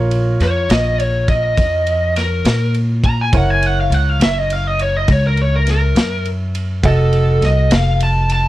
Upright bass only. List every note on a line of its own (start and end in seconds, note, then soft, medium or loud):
0.00 0.36 A#1 loud
0.40 0.67 F2 medium
0.69 1.53 A#1 medium
1.57 2.41 F2 medium
2.45 3.34 A#2 medium
3.33 3.87 F#1 medium
3.90 4.17 C#2 medium
4.20 5.04 F#1 medium
5.08 5.92 C#2 loud
5.95 6.85 F#2 medium
6.83 7.38 F1 loud
7.41 7.69 C2 medium
7.71 8.48 F1 medium